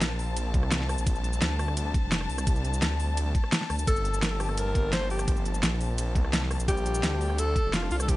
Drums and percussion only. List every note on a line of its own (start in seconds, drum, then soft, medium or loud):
0.02 snare loud
0.02 closed hi-hat loud
0.02 ride medium
0.02 cabasa soft
0.19 open hi-hat medium
0.19 cabasa soft
0.37 closed hi-hat loud
0.37 ride medium
0.37 cabasa soft
0.54 kick loud
0.54 closed hi-hat medium
0.63 cross-stick soft
0.72 snare loud
0.72 closed hi-hat loud
0.72 ride medium
0.72 cabasa soft
0.81 snare soft
0.89 cross-stick soft
0.89 open hi-hat medium
0.89 cabasa soft
0.98 cabasa medium
1.07 kick loud
1.07 closed hi-hat medium
1.07 ride medium
1.07 cabasa soft
1.16 cabasa soft
1.24 closed hi-hat medium
1.24 cabasa soft
1.33 cabasa medium
1.42 snare loud
1.42 closed hi-hat medium
1.42 ride medium
1.42 cabasa soft
1.59 cross-stick medium
1.59 open hi-hat medium
1.59 cabasa soft
1.68 cross-stick soft
1.77 closed hi-hat medium
1.77 ride medium
1.77 cabasa soft
1.94 kick loud
1.94 closed hi-hat medium
2.12 snare loud
2.12 closed hi-hat medium
2.12 ride medium
2.12 cabasa soft
2.21 cross-stick soft
2.29 open hi-hat medium
2.29 cabasa soft
2.38 cross-stick soft
2.38 cabasa medium
2.47 kick loud
2.47 closed hi-hat medium
2.47 ride medium
2.47 cabasa medium
2.56 cabasa soft
2.65 closed hi-hat medium
2.65 cabasa soft
2.73 cabasa medium
2.82 snare loud
2.82 closed hi-hat medium
2.82 ride medium
2.82 cabasa medium
3.00 open hi-hat medium
3.00 cabasa soft
3.17 closed hi-hat medium
3.17 ride medium
3.17 cabasa medium
3.35 kick loud
3.35 closed hi-hat medium
3.44 cross-stick soft
3.52 snare loud
3.52 closed hi-hat medium
3.52 ride medium
3.52 cabasa soft
3.61 snare soft
3.70 cross-stick soft
3.70 open hi-hat medium
3.70 cabasa soft
3.79 cabasa medium
3.87 kick loud
3.87 closed hi-hat medium
3.87 ride medium
3.87 cabasa soft
3.96 cabasa soft
4.05 closed hi-hat medium
4.05 cabasa soft
4.14 cabasa medium
4.23 snare loud
4.23 closed hi-hat loud
4.23 ride medium
4.23 cabasa medium
4.40 cross-stick medium
4.40 open hi-hat medium
4.40 cabasa soft
4.49 cross-stick soft
4.58 closed hi-hat medium
4.58 ride medium
4.58 cabasa medium
4.75 kick loud
4.75 closed hi-hat medium
4.93 snare loud
4.93 closed hi-hat medium
4.93 ride medium
4.93 cabasa medium
5.02 cross-stick soft
5.10 open hi-hat medium
5.10 cabasa soft
5.19 cross-stick soft
5.19 cabasa medium
5.28 kick loud
5.28 closed hi-hat medium
5.28 ride medium
5.28 cabasa medium
5.37 cabasa soft
5.46 closed hi-hat medium
5.46 cabasa soft
5.54 cabasa medium
5.63 snare loud
5.63 closed hi-hat loud
5.63 ride medium
5.63 cabasa medium
5.81 open hi-hat medium
5.81 cabasa soft
5.98 closed hi-hat medium
5.98 ride medium
5.98 cabasa medium
6.15 kick loud
6.15 closed hi-hat medium
6.25 cross-stick soft
6.33 snare loud
6.33 closed hi-hat loud
6.33 ride medium
6.33 cabasa medium
6.42 snare soft
6.51 cross-stick soft
6.51 open hi-hat medium
6.51 cabasa soft
6.60 cabasa medium
6.68 kick loud
6.68 closed hi-hat loud
6.68 ride medium
6.68 cabasa medium
6.77 cabasa soft
6.86 closed hi-hat medium
6.86 cabasa soft
6.95 cabasa medium
7.03 snare loud
7.03 closed hi-hat loud
7.03 ride medium
7.03 cabasa medium
7.21 open hi-hat medium
7.21 cabasa soft
7.30 cross-stick soft
7.38 closed hi-hat loud
7.38 ride medium
7.38 cabasa medium
7.56 kick loud
7.56 closed hi-hat medium
7.73 snare loud
7.73 closed hi-hat loud
7.73 ride medium
7.73 cabasa medium
7.82 cross-stick soft
7.91 open hi-hat medium
7.91 cabasa soft
8.00 cross-stick soft
8.00 cabasa medium
8.08 kick loud
8.08 closed hi-hat loud
8.08 ride medium
8.08 cabasa medium